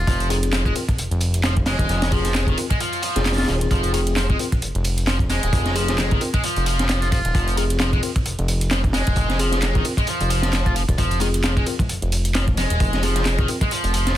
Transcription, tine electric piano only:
0.30 0.73 C4 medium
0.30 0.73 F4 medium
0.30 0.73 G#4 loud
0.76 0.83 C4 medium
0.76 0.83 F4 medium
0.76 0.83 A#4 loud
2.12 2.55 C4 medium
2.12 2.55 F4 medium
2.12 2.55 G#4 loud
2.58 2.65 C4 medium
2.58 2.65 F4 medium
2.58 2.65 A#4 loud
3.16 3.46 C4 loud
3.16 3.46 F4 medium
3.16 3.46 G#4 loud
3.48 3.92 C4 medium
3.48 3.92 F4 medium
3.48 3.92 G#4 medium
3.94 4.37 C4 medium
3.94 4.37 F4 medium
3.94 4.37 G#4 loud
4.40 4.47 C4 medium
4.40 4.47 F4 medium
4.40 4.47 A#4 loud
5.76 6.19 C4 medium
5.76 6.19 F4 medium
5.76 6.19 G#4 loud
6.21 6.28 C4 medium
6.21 6.28 F4 medium
6.21 6.28 A#4 loud
7.57 8.01 C4 medium
7.57 8.01 F4 medium
7.57 8.01 G#4 loud
8.03 8.10 C4 medium
8.03 8.10 F4 medium
8.03 8.10 A#4 loud
9.39 9.82 C4 medium
9.39 9.83 F4 medium
9.39 9.83 G#4 loud
9.85 9.92 C4 medium
9.85 9.92 F4 medium
9.85 9.92 A#4 loud
11.21 11.64 C4 medium
11.21 11.64 F4 medium
11.21 11.64 G#4 loud
11.67 11.74 C4 medium
11.67 11.74 F4 medium
11.67 11.74 A#4 loud
13.03 13.46 C4 medium
13.03 13.46 F4 medium
13.03 13.46 G#4 loud
13.48 13.56 C4 medium
13.48 13.56 F4 medium
13.48 13.56 A#4 loud

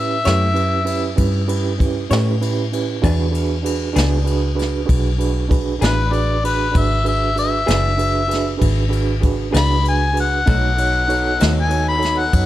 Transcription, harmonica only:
0.00 1.16 E5 medium
5.82 6.14 B4 medium
6.13 6.43 D5 medium
6.45 6.79 B4 medium
6.78 7.07 E5 medium
7.08 7.37 E5 medium
7.39 8.59 E5 medium
9.57 9.86 B5 medium
9.88 10.17 G#5 medium
10.20 11.54 F#5 medium
11.60 11.88 G#5 medium
11.89 12.20 B5 medium
12.19 12.46 F#5 medium

